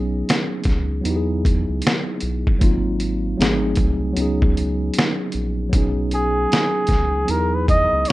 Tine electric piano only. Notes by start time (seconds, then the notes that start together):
Already playing: F#3 B3 C#4 D#4 G#4
1.01 F#3 B3
1.06 D#4 E4
1.10 G4
1.16 G#4
2.59 F#3 A#3 C4 D#4
2.63 F4
3.37 F#3 A3 C4 D#4 G#4
4.13 F#3 B3 C#4
4.20 D#4 G#4
5.69 F#3 B3
5.73 C#4 D#4
5.78 G#4
7.25 F#3 B3
7.29 D#4 E4
7.33 G4
7.40 G#4